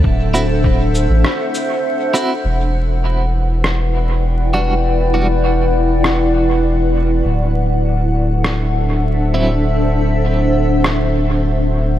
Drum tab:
SH |-x-x-x-x|--------|--------|--------|
SD |----r---|----r---|----r---|----r---|
BD |o-o-----|--------|--------|--------|

SH |--------|
SD |----r---|
BD |--------|